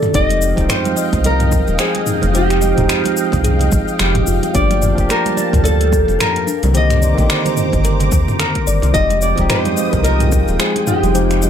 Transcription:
Already playing: C3 D#3 A#3 C4 D4 G4 A4 D5
0.03 mid tom, muted conga, shaker
0.13 F1 F3 G#3 C4 D#4 G4 D#5 F5 G5, kick, closed hi-hat, shaker
0.29 closed hi-hat, muted conga, shaker
0.42 D#5, shaker
0.55 D#1 F3 G#3 C4, kick, closed hi-hat, muted conga, shaker
0.60 D#4 G5
0.69 C5, finger snap, closed hi-hat, mid tom, shaker
0.84 closed hi-hat, high conga, shaker
0.96 D#5, muted conga, shaker
1.13 C2, kick, closed hi-hat, low conga, shaker
1.24 A#4 D#5, closed hi-hat, muted conga, shaker
1.40 closed hi-hat, mid tom, shaker
1.52 kick, high conga, shaker
1.67 D#1, muted conga, shaker
1.79 G#4 C5, finger snap, closed hi-hat, shaker
1.95 closed hi-hat, muted conga
2.07 D#4, mid tom, shaker
2.21 F1, closed hi-hat, high conga, low conga, shaker
2.32 F3 G#3 C4 D#4 G4 C5, closed hi-hat, muted conga, shaker
2.37 G4
2.50 finger snap, closed hi-hat, shaker
2.62 D#5, muted conga, shaker
2.75 D#1 F3 G#3 C4 D#4, kick, closed hi-hat, mid tom, low conga, shaker
2.80 G5
2.89 finger snap, closed hi-hat, shaker
3.04 closed hi-hat, muted conga, high conga, shaker
3.17 shaker
3.32 C2, kick, closed hi-hat, muted conga, low conga, shaker
3.44 G#4, closed hi-hat, mid tom, shaker
3.59 closed hi-hat, low conga, shaker
3.72 G#1, kick, muted conga, high conga, shaker
3.88 shaker
3.99 F1 G4, finger snap, closed hi-hat, muted conga, shaker
4.15 kick, closed hi-hat, mid tom
4.27 F1 F4, shaker
4.43 closed hi-hat, muted conga, high conga, shaker
4.54 G1 F3 A3 A#3 D4 G4 D5 A5, kick, closed hi-hat, shaker
4.71 closed hi-hat, muted conga, shaker
4.82 D5, mid tom, shaker
4.95 F1 F3 A#3, kick, closed hi-hat, shaker
4.99 D4 G4
5.09 A#4, finger snap, closed hi-hat, muted conga, shaker
5.26 closed hi-hat, high conga, shaker
5.37 D5, muted conga, shaker
5.53 D2, kick, closed hi-hat, mid tom, low conga, shaker
5.64 A4 D5, closed hi-hat, shaker
5.81 closed hi-hat, muted conga, shaker
5.92 kick, high conga, shaker
6.08 F1, muted conga, shaker
6.19 A#4, finger snap, closed hi-hat, mid tom, shaker
6.36 closed hi-hat
6.47 D4 C5 A#5 D6, muted conga, shaker
6.63 C2, closed hi-hat, high conga, low conga, shaker
6.73 D3 D#3 A#3 C4 G4 C5, closed hi-hat, muted conga, shaker
6.77 D#5
6.90 finger snap, closed hi-hat, mid tom, shaker
7.02 D5, shaker
7.15 A#1 D#3 A#3 C4, kick, closed hi-hat, muted conga, low conga, shaker
7.19 D3 G4
7.30 finger snap, closed hi-hat, shaker
7.45 closed hi-hat, muted conga, high conga, shaker
7.57 mid tom, shaker
7.72 G1, kick, closed hi-hat, low conga, shaker
7.84 A#4, closed hi-hat, muted conga, shaker
8.00 closed hi-hat, low conga, shaker
8.11 D#2, kick, muted conga, high conga, shaker
8.28 mid tom, shaker
8.40 A#4, finger snap, closed hi-hat, shaker
8.55 kick, closed hi-hat, muted conga
8.67 G1 D5, shaker
8.82 C2, closed hi-hat, muted conga, high conga, shaker
8.92 F1 F3 G#3 C4 D#4 F4 G4 D#5 G5 D#6, kick, closed hi-hat, shaker
9.10 closed hi-hat, muted conga, shaker
9.22 D5 D#5, shaker
9.35 D#1 F3 G#3 C4, kick, closed hi-hat, muted conga, shaker
9.40 D#4 G4
9.50 C5, finger snap, closed hi-hat, mid tom, shaker
9.65 closed hi-hat, high conga, shaker
9.77 D#5, muted conga, shaker
9.93 C2 A#4, kick, closed hi-hat, low conga, shaker
10.04 A#4 D#5, closed hi-hat, muted conga, shaker
10.20 closed hi-hat, mid tom, shaker
10.32 kick, high conga, shaker
10.48 D#1, muted conga, shaker
10.59 G#4 C5, finger snap, closed hi-hat, shaker
10.76 closed hi-hat, muted conga
10.87 D#4 G4, mid tom, shaker
11.03 F1, closed hi-hat, high conga, low conga, shaker
11.13 F3 G#3 C4 D#4 G4 C5 D6, closed hi-hat, muted conga, shaker
11.31 finger snap, closed hi-hat, shaker
11.42 D#5, muted conga, shaker

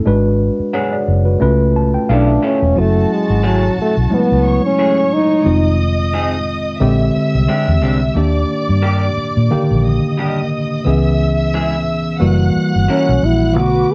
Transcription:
0.06 G#1 G#3 D4 F#4 B4
0.59 muted fingered electric bass stroke
0.73 F#3 B3 D4 G#4 C#5 F#5
0.93 G#4 D5
1.08 F#1
1.25 F#4 B4
1.40 C#2 A3 C#4 F4 B4
1.76 A5
1.94 G5
2.09 B1 F3 B3 D4 E4 A4 F5
2.28 E5
2.42 F3 B3 C#4 E4 A4
2.62 E1
2.75 F#1 F#3 A3 C#4 E4 F#4 A5
3.13 G#3
3.30 G#1
3.43 E3 F#3 A3 C#4 G#4
3.78 A3, muted fingered electric bass stroke
3.97 B1
4.10 F#3 G#3 A3 B3 E4, muted fingered electric bass stroke
4.32 C#2
4.45 C#5 C#6
4.66 C#4
4.79 E3 A3 C#4 G#4
5.14 D#4
5.44 F1 D#3 G#3 C4 F4 D#5 D#6
6.13 G#3 C4 D#4 G#4
6.80 A#1 D3 G#3 C4 G4 E5 E6
7.15 muted fingered electric bass stroke
7.35 C2
7.48 G#3 C4 D4 G4
7.68 E2
7.82 C2 G#3 C4 D4 G4
8.15 D#2 D#3 A#3 D4 G4 D5 D6
8.69 G2
8.82 G3 A#3 D4 G4
9.17 muted fingered electric bass stroke
9.37 A#2
9.51 D3 D#3 A#3 G4, muted fingered electric bass stroke
9.71 A#1
9.85 D#5 D#6
10.18 G3 A#3 D4 G4
10.85 C#2 E3 B3 C#4 G#4 E5 E6
11.54 G#3 B3 E4 G#4
12.20 F#1 E3 G3 A#3 F#4 F#5 F#6
12.56 muted fingered electric bass stroke
12.75 G1
12.88 G3 C#4 E4 A#4
13.09 B1
13.23 A#1 E4
13.55 B1 D3 A3 B3 F#4 B4 D6

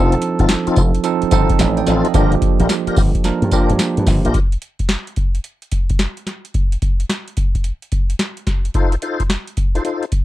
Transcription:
Already playing: F1 F3 C4 D4 D#4 F4 A4
0.12 closed hi-hat
0.22 closed hi-hat
0.39 G1 C4 D#4 F4 A4, kick, closed hi-hat
0.49 snare, closed hi-hat, tambourine
0.67 C4 D#4 F4 A4, muted slap bass stroke, closed hi-hat
0.76 F1, kick, closed hi-hat, tambourine
0.95 closed hi-hat
1.04 F3 C4 D#4 A4, closed hi-hat, tambourine
1.22 muted slap bass stroke, closed hi-hat
1.31 G1 F3 C4 D#4 F4 A4, kick, closed hi-hat, tambourine
1.50 kick, closed hi-hat
1.59 A1 A4 D#5, snare, closed hi-hat, tambourine
1.77 D5 G5, closed hi-hat
1.87 A1 C4 D#4 F4 A4 C5 F5, snare, closed hi-hat, tambourine
2.05 A4 D#5, closed hi-hat
2.14 G1 F3 A#3 D4 F4 G4 A#4, kick, closed hi-hat, tambourine
2.32 closed hi-hat
2.42 kick, closed hi-hat
2.60 A#1 D4 F4 G4 A#4, closed hi-hat
2.69 snare, closed hi-hat, tambourine
2.87 D4 F4 G4 A#4, muted slap bass stroke, closed hi-hat
2.96 G1, kick, open hi-hat, tambourine
3.15 kick, closed hi-hat
3.24 F3 A#3 D4 A#4, snare, closed hi-hat, tambourine
3.42 G2, closed hi-hat
3.51 F3 A#3 D4 F4 G4 A#4, kick, closed hi-hat, tambourine
3.70 G2, closed hi-hat
3.79 snare, closed hi-hat, tambourine
3.97 G2, closed hi-hat
4.07 G1, kick, snare, open hi-hat, tambourine
4.25 A#1 D4 F4 G4 A#4, closed hi-hat
4.34 kick, closed hi-hat
4.52 closed hi-hat
4.62 closed hi-hat
4.79 kick, closed hi-hat
4.89 snare, closed hi-hat
5.07 closed hi-hat
5.16 kick, closed hi-hat
5.35 closed hi-hat
5.44 closed hi-hat
5.62 closed hi-hat
5.71 kick, closed hi-hat
5.90 kick, closed hi-hat
5.99 snare, closed hi-hat
6.17 closed hi-hat
6.27 snare, closed hi-hat
6.45 closed hi-hat
6.54 kick, closed hi-hat
6.72 closed hi-hat
6.82 kick, closed hi-hat
7.00 closed hi-hat
7.09 snare, closed hi-hat
7.28 closed hi-hat
7.37 kick, closed hi-hat
7.55 kick, closed hi-hat
7.64 closed hi-hat
7.82 closed hi-hat
7.92 kick, closed hi-hat
8.10 closed hi-hat
8.19 snare, closed hi-hat
8.37 closed hi-hat
8.47 kick, snare, closed hi-hat
8.65 closed hi-hat
8.74 D#4 F4 A4 C5, kick, closed hi-hat
8.92 closed hi-hat
9.02 D#4 F4 A4 C5, closed hi-hat
9.20 kick, closed hi-hat
9.30 snare, closed hi-hat
9.47 closed hi-hat
9.57 kick, closed hi-hat
9.75 D#4 F4 A4 C5, closed hi-hat
9.84 D#4 F4 A4 C5, closed hi-hat
10.03 closed hi-hat
10.12 kick, closed hi-hat

